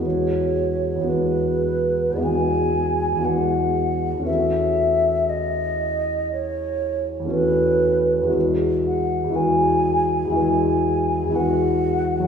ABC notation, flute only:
X:1
M:4/4
L:1/16
Q:1/4=59
K:E
V:1 name="Flute"
c4 B4 g4 f4 | e4 d4 c3 z B4 | z2 f2 g4 g4 f4 |]